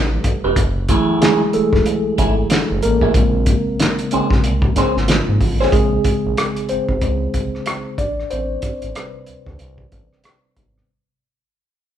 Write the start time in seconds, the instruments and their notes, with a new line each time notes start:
Already playing: analog synth bass A1, tine electric piano G3 A3 A4
0.24 kick, closed hi-hat
0.44 analog synth bass F1, clean electric guitar C4 G4 B4
0.56 analog synth bass F#1, kick, closed hi-hat
0.89 tine electric piano E3 F#3 A3 E4, clean electric guitar A3 E4 G#4, kick, closed hi-hat
1.21 tine electric piano G#3 G#4, clean electric guitar A3 E4 G#4, snare, closed hi-hat
1.53 analog synth bass E1, tine electric piano A3 A4, closed hi-hat
1.73 analog synth bass E1, kick, snare
1.86 closed hi-hat
2.18 analog synth bass G#1, clean electric guitar A3 E4 G#4, kick, closed hi-hat
2.50 snare, closed hi-hat
2.71 analog synth bass F#1
2.82 analog synth bass A1, tine electric piano A#3 A#4, closed hi-hat
3.01 clean electric guitar A3 E4 G#4, kick
3.14 analog synth bass A#1, tine electric piano C#3 G#3 C4, kick, closed hi-hat
3.46 kick, closed hi-hat
3.80 snare, closed hi-hat
3.99 closed hi-hat
4.11 analog synth bass A#1, tine electric piano C#3 G#3 C4, clean electric guitar C#4 G#4 C5, closed hi-hat
4.30 analog synth bass A#1, kick, snare
4.44 analog synth bass C2, closed hi-hat
4.62 kick
4.76 analog synth bass G#1, clean electric guitar C#4 G#4 C5, kick, snare, closed hi-hat
4.97 analog synth bass G#1, snare
5.08 tine electric piano F3 F4, snare, closed hi-hat
5.29 analog synth bass G#2
5.41 analog synth bass A1, kick, open hi-hat
5.61 clean electric guitar C#4 G#4 C5, snare
5.72 analog synth bass A#1, tine electric piano C#3 G#3 C4 G#4, kick, closed hi-hat
6.04 kick, closed hi-hat
6.26 analog synth bass A#1
6.37 cross-stick, closed hi-hat
6.56 closed hi-hat
6.69 analog synth bass G#1, tine electric piano C4 C5, closed hi-hat
6.89 analog synth bass G#1, kick
7.01 analog synth bass C#2, tine electric piano C#3 G#3 C4, kick, closed hi-hat
7.34 analog synth bass C2, kick, closed hi-hat
7.55 cross-stick
7.66 cross-stick, closed hi-hat
7.98 analog synth bass A1, tine electric piano D4 D5, kick, closed hi-hat
8.20 cross-stick
8.31 analog synth bass A1, tine electric piano C4 C5, closed hi-hat
8.62 kick, closed hi-hat
8.82 analog synth bass A1, closed hi-hat
8.95 tine electric piano C3 G3 B4, cross-stick, closed hi-hat
9.26 analog synth bass D2, closed hi-hat
9.46 analog synth bass D2, kick, cross-stick
9.59 analog synth bass C2, closed hi-hat
9.78 kick
9.92 analog synth bass A1, kick, closed hi-hat
10.13 cross-stick
10.24 cross-stick, closed hi-hat
10.57 analog synth bass G#1, tine electric piano C3 G3 B3, kick, closed hi-hat
10.78 cross-stick